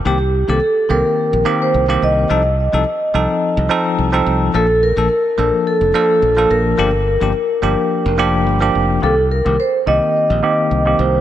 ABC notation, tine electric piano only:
X:1
M:4/4
L:1/16
Q:"Swing 16ths" 1/4=107
K:Cdor
V:1 name="Tine electric piano"
[E,B,CG] z2 [E,B,CG] z2 [E,B,CG]4 [E,B,CG]3 [E,B,CG]3 | [F,CEA] z2 [F,CEA] z2 [F,CEA]4 [F,CEA]3 [F,CEA]3 | [F,B,DA] z2 [F,B,DA] z2 [F,B,DA]4 [F,B,DA]3 [F,B,DA]3 | [F,B,DG] z2 [F,B,DG] z2 [F,B,DG]4 [F,B,DG]3 [F,B,DG]3 |
[E,B,CG] z2 [E,B,CG] z2 [E,B,CG]4 [E,B,CG]3 [E,B,CG]3 |]